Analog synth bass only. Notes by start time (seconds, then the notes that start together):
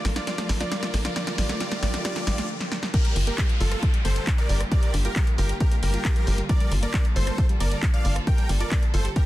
0.05 A#1
0.49 A#1
0.94 A#1
1.38 A#1
1.83 A#1
2.27 A#1
3.16 G1
3.60 G1
4.05 G1
4.49 G1
4.94 G1
5.38 G1
5.83 G1
6.27 G1
6.71 G1
7.16 G1
7.60 G1
8.05 G1
8.49 G1
8.94 G1